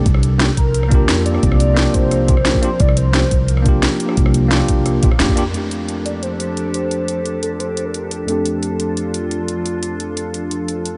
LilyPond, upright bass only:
\new Staff \with { instrumentName = "Upright bass" } { \clef bass \time 4/4 \key f \major \tempo 4 = 175 c,4 r8 c,4. f,4 | c,4 r8 c,4. r4 | c,4 r8 c,4. r4 | c,4 r8 c,4 bes,,8 f,4 |
r1 | r1 | r1 | r1 | }